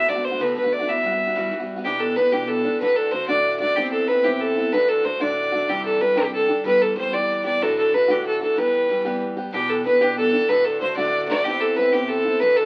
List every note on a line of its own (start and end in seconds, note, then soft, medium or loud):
0.00 0.10 E5 loud
0.07 0.15 D3 medium
0.07 0.15 A3 medium
0.07 0.16 B3 medium
0.07 0.14 F#4 medium
0.07 0.26 D5 medium
0.15 0.33 D3 soft
0.15 0.32 A3 medium
0.15 0.32 B3 soft
0.15 0.30 F#4 soft
0.25 0.42 C5 medium
0.32 0.39 D3 soft
0.32 0.40 A3 medium
0.32 0.39 B3 soft
0.32 0.40 F#4 soft
0.39 0.55 D2 medium
0.39 0.56 A2 medium
0.39 0.54 D3 medium
0.39 0.56 A3 medium
0.39 0.55 B3 medium
0.39 0.56 F#4 medium
0.39 0.56 B4 medium
0.55 0.63 D3 medium
0.55 0.63 A3 medium
0.55 0.64 B3 medium
0.55 0.62 F#4 medium
0.55 0.74 B4 medium
0.63 0.81 D3 soft
0.63 0.79 A3 soft
0.63 0.80 B3 soft
0.63 0.78 F#4 soft
0.73 0.90 D5 medium
0.79 0.87 D3 soft
0.79 0.88 A3 medium
0.79 0.87 B3 soft
0.79 0.87 F#4 medium
0.87 1.01 E3 medium
0.87 1.03 G3 medium
0.87 1.04 B3 medium
0.87 1.05 F#4 medium
0.87 1.52 E5 medium
1.03 1.11 E3 medium
1.03 1.12 G3 medium
1.03 1.11 B3 medium
1.03 1.10 F#4 medium
1.11 1.29 G3 soft
1.11 1.28 B3 soft
1.11 1.26 F#4 medium
1.27 1.35 G3 soft
1.27 1.36 B3 medium
1.27 1.35 F#4 medium
1.35 1.50 E3 medium
1.35 1.51 G3 medium
1.35 1.52 B3 medium
1.35 1.53 F#4 medium
1.51 1.60 E3 medium
1.51 1.60 G3 medium
1.51 1.60 B3 medium
1.51 1.58 F#4 medium
1.60 1.77 G3 soft
1.60 1.77 B3 medium
1.60 1.75 F#4 medium
1.76 1.85 G3 soft
1.76 1.85 B3 medium
1.76 1.84 F#4 medium
1.85 2.16 E2 medium
1.85 2.16 B2 medium
1.85 2.15 E3 medium
1.85 2.16 B3 medium
1.85 2.17 D4 medium
1.85 2.02 G4 medium
1.85 2.17 G4 medium
2.00 2.18 A4 medium
2.16 2.32 E3 medium
2.16 2.32 B3 medium
2.16 2.31 D4 medium
2.16 2.31 G4 medium
2.16 2.34 B4 medium
2.32 2.65 E2 medium
2.32 2.65 B2 medium
2.32 2.65 E3 medium
2.32 2.64 B3 medium
2.32 2.63 D4 medium
2.32 2.62 G4 medium
2.32 2.49 G4 medium
2.48 2.80 A4 medium
2.63 2.81 E3 soft
2.63 2.81 B3 soft
2.63 2.80 D4 medium
2.63 2.80 G4 soft
2.80 3.12 D2 medium
2.80 3.13 A2 medium
2.80 3.11 D3 medium
2.80 3.13 A3 medium
2.80 3.13 D4 medium
2.80 3.13 F#4 medium
2.80 2.98 B4 loud
2.96 3.13 A4 medium
3.12 3.28 D3 medium
3.12 3.28 A3 medium
3.12 3.28 D4 medium
3.12 3.27 F#4 medium
3.12 3.28 C5 loud
3.28 3.61 D2 medium
3.28 3.61 A2 medium
3.28 3.61 D3 medium
3.28 3.61 A3 medium
3.28 3.60 D4 medium
3.28 3.59 F#4 medium
3.28 3.58 D5 medium
3.60 3.77 D3 soft
3.60 3.77 A3 soft
3.60 3.77 D4 soft
3.60 3.76 F#4 medium
3.60 3.77 D5 loud
3.76 4.08 A2 medium
3.76 4.07 E3 medium
3.76 4.08 B3 medium
3.76 4.09 C4 medium
3.76 4.09 E4 medium
3.76 3.91 G4 loud
3.92 4.10 A4 medium
4.08 4.24 E3 medium
4.08 4.24 B3 medium
4.08 4.24 C4 medium
4.08 4.23 E4 medium
4.08 4.26 B4 medium
4.24 4.57 A2 medium
4.24 4.57 E3 medium
4.24 4.57 B3 medium
4.24 4.56 C4 medium
4.24 4.55 E4 medium
4.24 4.42 G4 medium
4.41 4.74 A4 medium
4.56 4.73 B3 soft
4.56 4.73 C4 soft
4.56 4.72 E4 medium
4.72 5.04 D2 medium
4.72 5.05 A2 medium
4.72 5.02 D3 medium
4.72 5.03 A3 medium
4.72 5.04 D4 medium
4.72 5.05 F#4 medium
4.72 4.90 B4 loud
4.89 5.06 A4 medium
5.03 5.20 D3 medium
5.03 5.20 A3 medium
5.03 5.19 D4 medium
5.03 5.19 F#4 medium
5.03 5.23 C5 medium
5.20 5.53 D2 soft
5.20 5.53 A2 medium
5.20 5.53 D3 medium
5.20 5.53 A3 medium
5.20 5.52 D4 medium
5.20 5.51 F#4 medium
5.20 5.71 D5 medium
5.52 5.68 D3 soft
5.52 5.69 A3 soft
5.52 5.68 D4 soft
5.52 5.68 F#4 medium
5.68 6.00 C3 medium
5.68 6.00 E3 medium
5.68 6.00 G3 medium
5.68 6.01 D4 medium
5.68 5.84 G4 medium
5.68 6.01 G4 medium
5.85 6.03 A4 medium
6.00 6.16 E3 medium
6.00 6.16 G3 medium
6.00 6.15 D4 medium
6.00 6.14 G4 medium
6.00 6.19 B4 medium
6.16 6.49 C3 medium
6.16 6.53 E3 medium
6.16 6.49 G3 medium
6.16 6.49 D4 medium
6.16 6.47 G4 medium
6.16 6.33 G4 medium
6.33 6.63 A4 medium
6.48 6.64 G3 soft
6.48 6.65 D4 soft
6.48 6.64 G4 medium
6.64 6.95 E3 medium
6.64 6.96 G3 medium
6.64 6.97 B3 medium
6.64 6.98 G4 medium
6.64 6.83 B4 loud
6.82 6.97 A4 medium
6.96 7.12 E3 medium
6.96 7.13 G3 medium
6.96 7.12 B3 medium
6.96 7.11 G4 medium
6.96 7.15 C5 medium
7.12 7.61 E3 medium
7.12 7.45 G3 medium
7.12 7.45 B3 medium
7.12 7.43 G4 medium
7.12 7.45 D5 medium
7.44 7.61 G3 soft
7.44 7.61 B3 soft
7.44 7.61 G4 medium
7.44 7.64 D5 medium
7.60 7.93 D2 medium
7.60 7.93 A2 medium
7.60 7.92 E3 medium
7.60 7.92 A3 medium
7.60 7.93 D4 medium
7.60 7.94 F#4 medium
7.60 7.77 A4 loud
7.78 7.95 A4 medium
7.92 8.09 E3 medium
7.92 8.08 A3 medium
7.92 8.08 D4 medium
7.92 8.07 F#4 medium
7.92 8.12 B4 medium
8.08 8.42 D2 medium
8.08 8.42 A2 medium
8.08 8.43 E3 medium
8.08 8.41 A3 medium
8.08 8.40 D4 medium
8.08 8.39 F#4 medium
8.08 8.26 G4 medium
8.26 8.41 A4 medium
8.41 8.55 E3 soft
8.41 8.57 A3 soft
8.41 8.57 D4 soft
8.41 8.57 F#4 medium
8.41 8.60 A4 medium
8.56 8.87 E3 medium
8.56 8.88 G3 medium
8.56 8.89 B3 medium
8.56 8.90 G4 medium
8.56 9.22 B4 medium
8.89 9.05 E3 medium
8.89 9.05 G3 medium
8.89 9.04 B3 medium
8.89 9.04 G4 medium
9.05 9.38 E3 medium
9.05 9.38 G3 medium
9.05 9.37 B3 medium
9.05 9.36 G4 medium
9.37 9.53 G3 soft
9.37 9.52 B3 medium
9.37 9.53 G4 medium
9.52 9.85 E2 medium
9.52 9.85 B2 medium
9.52 9.83 E3 medium
9.52 9.84 B3 medium
9.52 9.85 D4 medium
9.52 9.71 G4 medium
9.52 9.86 G4 medium
9.70 9.85 A4 medium
9.84 10.01 E3 medium
9.84 10.00 B3 medium
9.84 10.00 D4 medium
9.84 10.00 G4 medium
9.84 10.03 B4 medium
10.01 10.34 E2 medium
10.01 10.34 B2 medium
10.01 10.34 E3 medium
10.01 10.33 B3 medium
10.01 10.32 D4 medium
10.01 10.32 G4 medium
10.01 10.17 G4 medium
10.17 10.50 A4 loud
10.33 10.49 E3 soft
10.33 10.49 B3 soft
10.33 10.49 D4 soft
10.33 10.49 G4 medium
10.48 10.81 D2 medium
10.48 10.81 A2 medium
10.48 10.79 D3 medium
10.48 10.81 A3 medium
10.48 10.81 D4 medium
10.48 10.82 F#4 medium
10.48 10.66 B4 loud
10.65 10.80 A4 medium
10.80 10.97 D3 medium
10.80 10.97 A3 medium
10.80 10.96 D4 medium
10.80 10.96 F#4 medium
10.80 10.96 C5 medium
10.96 11.30 D2 medium
10.96 11.30 A2 medium
10.96 11.30 D3 medium
10.96 11.30 A3 medium
10.96 11.28 D4 medium
10.96 11.27 F#4 medium
10.96 11.27 D5 loud
11.28 11.45 D3 soft
11.28 11.46 A3 medium
11.28 11.45 D4 soft
11.28 11.45 F#4 medium
11.28 11.46 D5 loud
11.45 11.77 A2 medium
11.45 11.76 E3 medium
11.45 11.77 B3 medium
11.45 11.78 C4 medium
11.45 11.78 E4 medium
11.45 11.62 G4 loud
11.61 11.78 A4 medium
11.76 11.93 E3 medium
11.76 11.93 B3 medium
11.76 11.92 C4 medium
11.76 11.92 E4 medium
11.76 11.94 B4 loud
11.92 12.26 A2 medium
11.92 12.26 E3 medium
11.92 12.26 B3 medium
11.92 12.25 C4 medium
11.92 12.23 E4 medium
11.92 12.10 G4 medium
12.08 12.41 A4 medium
12.24 12.42 B3 soft
12.24 12.42 C4 soft
12.24 12.41 E4 medium
12.40 12.65 D2 medium
12.40 12.65 A2 medium
12.40 12.65 D3 medium
12.40 12.65 A3 medium
12.40 12.65 D4 medium
12.40 12.65 F#4 medium
12.40 12.58 B4 loud
12.56 12.65 A4 medium